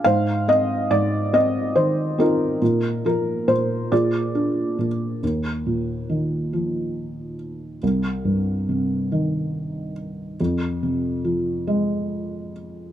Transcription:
<<
  \new Staff \with { instrumentName = "Felt piano" } { \time 6/8 \key ees \major \tempo 4. = 47 << { f''8 ees''8 d''8 ees''8 c''8 bes'8~ | bes'8 bes'8 c''8 d''4 r8 | r2. | r2. |
r2. | } \\ { c''4. r4 <ees' f'>8~ | <ees' f'>4 r8 <f' aes'>4. | r2. | r2. |
r2. | } >> }
  \new Staff \with { instrumentName = "Felt piano" } { \clef bass \time 6/8 \key ees \major aes,8 c'8 aes,8 c'8 ees8 c'8 | bes,8 f8 bes,8 bes,8 d'8 bes,8 | ees,8 bes,8 ees8 f4. | c,8 g,8 c8 ees4. |
f,8 c8 f8 aes4. | }
>>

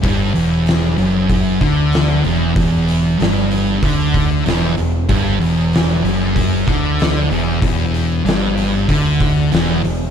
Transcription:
<<
  \new Staff \with { instrumentName = "Distorted electric guitar" } { \clef bass \time 4/4 \key e \minor \tempo 4 = 95 g,8 e,4 fis,4 d4 e,8 | e,4 g,4 d4 e,8 e,8 | g,8 e,4 fis,4 d4 e,8 | e,4 g,4 d4 e,8 e,8 | }
  \new Staff \with { instrumentName = "Distorted electric guitar" } { \clef bass \time 4/4 \key e \minor g,8 e,4 fis,4 d4 e,8 | e,4 g,4 d4 e,8 e,8 | g,8 e,4 fis,4 d4 e,8 | e,4 g,4 d4 e,8 e,8 | }
  \new Staff \with { instrumentName = "Picked electric bass" } { \clef bass \time 4/4 \key e \minor g,,8 e,,4 fis,,4 d,4 e,,8 | e,,4 g,,4 d,4 e,,8 e,,8 | g,,8 e,,4 fis,,4 d,4 e,,8 | e,,4 g,,4 d,4 e,,8 e,,8 | }
  \new DrumStaff \with { instrumentName = "Drums" } \drummode { \time 4/4 <hho bd>8 hho8 <hho sn>8 hho8 <hho bd>8 <hho bd>8 <hho sn>8 hho8 | <hho bd>8 hho8 <hho sn>8 hho8 <hho bd>8 <hho bd>8 <hho sn>8 hho8 | <hho bd>8 hho8 <hho sn>8 hho8 <hho bd>8 <hho bd>8 <hho sn>8 hho8 | <hho bd>8 hho8 <hho sn>8 hho8 <hho bd>8 <hho bd>8 <hho sn>8 hho8 | }
>>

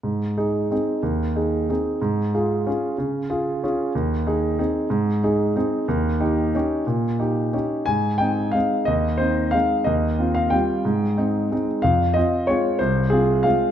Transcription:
\new Staff \with { instrumentName = "Grand piano" } { \time 3/4 \key aes \major \tempo 4 = 184 << { r2. | r2. | r2. | r2. |
r2. | r2. | r2. | r2. |
aes''4 g''4 f''4 | ees''4 c''4 f''4 | ees''4. f''8 g''4~ | g''2~ g''8 r8 |
f''4 ees''4 des''4 | c''4 aes'4 f''4 | } \\ { aes,4 <ees' aes'>4 <c' ees' aes'>4 | ees,4 <ees' aes'>4 <c' ees' aes'>4 | aes,4 <f' aes'>4 <des' f' aes'>4 | des4 <f' aes'>4 <des' f' aes'>4 |
ees,4 <ees' aes'>4 <c' ees' aes'>4 | aes,4 <ees' aes'>4 <c' ees' aes'>4 | ees,4 <ees' g'>4 <des' ees' g'>4 | bes,4 <ees' g'>4 <des' ees' g'>4 |
aes,4 <c' ees'>4 <aes c' ees'>4 | ees,4 <c' ees'>4 <aes c' ees'>4 | ees,4 <c' f'>4 <g c' f'>4 | aes,4 <c' ees'>4 <aes c' ees'>4 |
f,4 <c' f'>4 <aes c' f'>4 | c,4 <c' f'>4 <aes c' f'>4 | } >> }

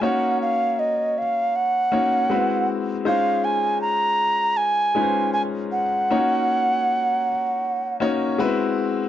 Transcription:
<<
  \new Staff \with { instrumentName = "Ocarina" } { \time 4/4 \key des \major \tempo 4 = 79 ges''8 f''8 ees''8 f''8 ges''4. r8 | f''8 aes''8 bes''4 aes''4 aes''8 ges''8~ | ges''2~ ges''8 r4. | }
  \new Staff \with { instrumentName = "Grand piano" } { \time 4/4 \key des \major <bes des' ees' ges' des''>4. r4 <bes des' ees' ges' des''>8 <aes c' e' ges' b'>4 | <aes des' ees' f' c''>4. r4 <aes des' ees' f' ces'' c''>4 r8 | <bes des' ees' f' ges' des''>4. r4 <bes des' ees' ges' des''>8 <aes b c' e' ges' b'>4 | }
>>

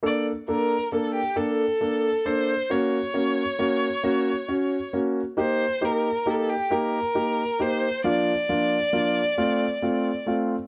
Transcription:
<<
  \new Staff \with { instrumentName = "Violin" } { \time 6/8 \key bes \major \tempo 4. = 45 d''8 bes'8 a'16 g'16 a'4 c''8 | des''2~ des''8 r8 | c''8 bes'8 a'16 g'16 bes'4 c''8 | d''2~ d''8 r8 | }
  \new Staff \with { instrumentName = "Grand piano" } { \time 6/8 \key bes \major <bes d' a'>8 <bes d' a'>8 <bes d' a'>8 <bes d' a'>8 <bes d' a'>8 <bes d' a'>8 | <bes des' ges'>8 <bes des' ges'>8 <bes des' ges'>8 <bes des' ges'>8 <des' ges'>8 <bes des' ges'>8 | <bes ees' g'>8 <bes ees' g'>8 <bes ees' g'>8 <bes ees' g'>8 <bes ees' g'>8 <bes ees' g'>8 | <f bes d' f'>8 <f bes d' f'>8 <f bes d' f'>8 <a c' f'>8 <a c' f'>8 <a c' f'>8 | }
>>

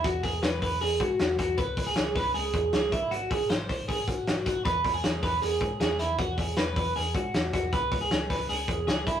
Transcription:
<<
  \new Staff \with { instrumentName = "Clean electric guitar" } { \time 4/4 \key e \major \tempo 4 = 156 fis'8 gis'8 b'8 b'8 gis'8 fis'4 fis'8 | b'8. gis'8. b'8 gis'4 gis'8 e'8 | fis'8 gis'8 bis'8 bis'8 gis'8 fis'4 fis'8 | b'8. gis'8. b'8 gis'4 gis'8 e'8 |
fis'8 gis'8 b'8 b'8 gis'8 fis'4 fis'8 | b'8. gis'8. b'8 gis'4 gis'8 e'8 | }
  \new Staff \with { instrumentName = "Picked electric bass" } { \clef bass \time 4/4 \key e \major e,8 e,8 e,8 e,8 e,8 gis,8 e,8 e,8 | cis,8 cis,8 cis,8 cis,8 cis,8 e,8 cis,8 gis,,8~ | gis,,8 gis,,8 gis,,8 gis,,8 gis,,8 gis,,8 gis,,8 gis,,8 | e,8 e,8 e,8 e,8 e,8 gis,8 e,8 e,8 |
e,8 e,8 e,8 e,8 e,8 gis,8 e,8 e,8 | cis,8 cis,8 cis,8 cis,8 cis,8 e,8 cis,8 gis,,8 | }
  \new DrumStaff \with { instrumentName = "Drums" } \drummode { \time 4/4 <hho hhp bd>8 <hho hhp bd>8 <hho hhp sn>8 <hho hhp bd>8 <hho hhp>8 <hho hhp bd>8 <hho hhp sn>8 <hho hhp bd>8 | <hho hhp bd>8 <hho hhp bd>8 <hho hhp sn>8 <hho hhp bd sn>8 <hho hhp>8 <hho hhp bd>8 <hho hhp sn>8 <hho hhp bd>8 | <hho hhp>8 <hho hhp bd>8 <hho hhp sn>8 <hho hhp bd>8 <hho hhp bd>8 <hho hhp bd>8 <hho hhp sn>8 <hho hhp bd>8 | <hho hhp bd>8 <hho hhp bd>8 <hho hhp sn>8 <hho hhp bd sn>8 <hho hhp>8 <hho hhp bd>8 <hho hhp sn>8 <hho hhp>8 |
<hho hhp bd>8 <hho hhp bd>8 <hho hhp sn>8 <hho hhp bd>8 <hho hhp>8 <hho hhp bd>8 <hho hhp sn>8 <hho hhp bd>8 | <hho hhp bd>8 <hho hhp bd>8 <hho hhp sn>8 <hho hhp bd sn>8 <hho hhp>8 <hho hhp bd>8 <hho hhp sn>8 <hho hhp bd>8 | }
>>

